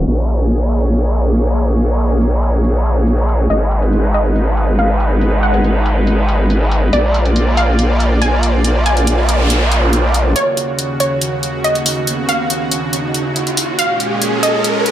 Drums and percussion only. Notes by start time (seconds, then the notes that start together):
0.07 closed hi-hat
0.29 closed hi-hat
0.40 closed hi-hat
0.50 closed hi-hat
0.72 closed hi-hat
0.93 closed hi-hat
1.14 closed hi-hat
1.36 closed hi-hat
1.57 closed hi-hat
1.79 closed hi-hat
2.00 closed hi-hat
2.11 closed hi-hat
2.21 closed hi-hat
2.43 closed hi-hat
2.64 closed hi-hat
2.86 closed hi-hat
3.07 closed hi-hat
3.18 closed hi-hat
3.29 closed hi-hat
3.50 closed hi-hat
3.71 closed hi-hat
3.82 closed hi-hat
3.93 closed hi-hat
4.14 closed hi-hat
4.36 closed hi-hat
4.57 closed hi-hat
4.79 closed hi-hat
5.00 closed hi-hat
5.21 closed hi-hat
5.43 closed hi-hat
5.54 closed hi-hat
5.64 closed hi-hat
5.86 closed hi-hat
6.07 closed hi-hat
6.29 closed hi-hat
6.50 closed hi-hat
6.72 closed hi-hat
6.93 closed hi-hat
7.14 closed hi-hat
7.25 closed hi-hat
7.36 closed hi-hat
7.57 closed hi-hat
7.79 closed hi-hat
8.00 closed hi-hat
8.22 closed hi-hat
8.43 closed hi-hat
8.64 closed hi-hat
8.86 closed hi-hat
8.97 closed hi-hat
9.07 closed hi-hat
9.29 closed hi-hat
9.50 closed hi-hat
9.72 closed hi-hat
9.93 closed hi-hat
10.14 closed hi-hat
10.36 closed hi-hat
10.57 closed hi-hat
10.79 closed hi-hat
11.00 closed hi-hat
11.21 closed hi-hat
11.43 closed hi-hat
11.64 closed hi-hat
11.75 closed hi-hat
11.86 open hi-hat
12.07 closed hi-hat
12.29 closed hi-hat
12.50 closed hi-hat
12.72 closed hi-hat
12.93 closed hi-hat
13.14 closed hi-hat
13.36 closed hi-hat
13.47 closed hi-hat
13.57 open hi-hat
13.79 closed hi-hat
14.00 closed hi-hat
14.22 closed hi-hat
14.43 closed hi-hat
14.64 closed hi-hat
14.86 closed hi-hat